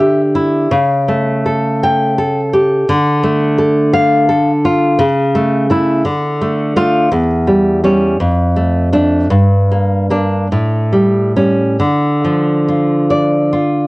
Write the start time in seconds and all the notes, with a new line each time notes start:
Already playing: D3 E5
0.00 G4
0.35 E4
0.71 C#3
1.09 A3
1.46 A4
1.83 G5
2.18 A4
2.53 G4
2.89 D3
3.23 A3
3.58 A4
3.93 F5
4.29 A4
4.65 F4
4.99 C#3
5.35 A3
5.70 A3 E4
6.05 D3
6.41 A3
6.76 A3 F4
7.12 E2
7.47 G3
7.84 G3 C#4
8.20 F2
8.56 A3
8.93 A3 D4
9.30 G2
9.72 A#3
10.11 A#3 D4
10.52 A2
10.93 G3
11.36 G3 C#4
11.80 D3
12.25 F3
12.69 F4
13.10 D5
13.52 F4